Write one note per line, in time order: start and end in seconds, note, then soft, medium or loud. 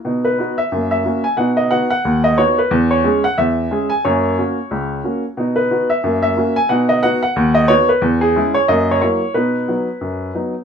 0.05 0.33 B2 medium
0.05 0.24 D#4 soft
0.25 0.58 B4 medium
0.39 0.57 B3 soft
0.39 0.57 D#4 soft
0.39 0.58 F#4 soft
0.58 0.90 E5 medium
0.72 1.00 F#2 medium
0.72 0.92 A#3 soft
0.91 1.24 E5 medium
1.04 1.23 A#3 soft
1.04 1.23 C#4 soft
1.04 1.24 F#4 soft
1.24 1.38 G#5 medium
1.37 1.66 B2 medium
1.37 1.58 D#4 soft
1.37 1.57 F#5 medium
1.57 1.71 D#5 medium
1.71 1.89 B3 soft
1.71 1.90 D#4 soft
1.71 1.90 F#4 soft
1.71 1.89 F#5 medium
1.90 2.24 F#5 medium
2.05 2.33 D#2 medium
2.24 2.38 D#5 medium
2.38 2.56 B3 soft
2.38 2.56 D#4 soft
2.38 2.57 F#4 medium
2.38 2.58 C#5 medium
2.59 2.72 B4 medium
2.71 2.99 E2 medium
2.91 3.24 C#5 medium
3.04 3.23 G#3 soft
3.04 3.23 C#4 medium
3.04 3.23 G#4 medium
3.24 3.38 F#5 medium
3.38 3.66 E2 medium
3.38 3.91 E5 medium
3.71 3.89 G#3 soft
3.71 3.89 C#4 soft
3.71 3.90 G#4 medium
3.90 4.04 G#5 medium
4.05 4.33 F#2 medium
4.05 4.24 A#3 soft
4.05 5.24 C#5 medium
4.38 4.56 A#3 soft
4.38 4.57 C#4 soft
4.38 4.57 F#4 soft
4.71 4.99 C#2 soft
5.04 5.22 A#3 soft
5.04 5.23 C#4 soft
5.04 5.23 F#4 soft
5.37 5.66 B2 medium
5.37 5.57 D#4 soft
5.56 5.90 B4 medium
5.71 5.89 B3 soft
5.71 5.89 D#4 soft
5.71 5.90 F#4 soft
5.90 6.21 E5 medium
6.04 6.32 F#2 medium
6.04 6.23 A#3 soft
6.23 6.56 E5 medium
6.37 6.55 A#3 soft
6.37 6.55 C#4 soft
6.37 6.56 F#4 soft
6.56 6.70 G#5 medium
6.69 6.98 B2 medium
6.69 6.90 D#4 soft
6.69 6.89 F#5 medium
6.89 7.03 D#5 medium
7.03 7.22 B3 soft
7.03 7.22 D#4 soft
7.03 7.22 F#4 medium
7.03 7.21 F#5 medium
7.23 7.56 F#5 medium
7.36 7.65 D#2 medium
7.55 7.69 D#5 medium
7.68 7.87 B3 medium
7.68 7.88 D#4 soft
7.68 7.88 F#4 medium
7.68 7.89 C#5 medium
7.89 8.03 B4 medium
8.02 8.31 E2 medium
8.21 8.55 G#4 medium
8.36 8.54 G#3 soft
8.36 8.55 C#4 soft
8.36 8.55 E4 medium
8.54 8.69 C#5 medium
8.68 8.97 F#2 medium
8.68 8.89 A#3 soft
8.68 8.91 D#5 medium
8.91 9.00 C#5 medium
9.01 9.21 F#3 soft
9.01 9.21 A#3 soft
9.01 9.21 E4 soft
9.01 9.35 C#5 medium
9.34 9.64 B2 medium
9.34 9.55 D#4 soft
9.34 10.35 B4 medium
9.68 9.87 F#3 soft
9.68 9.87 B3 soft
9.68 9.87 D#4 soft
10.01 10.30 F#2 soft
10.35 10.53 F#3 soft
10.35 10.53 B3 soft
10.35 10.54 D#4 soft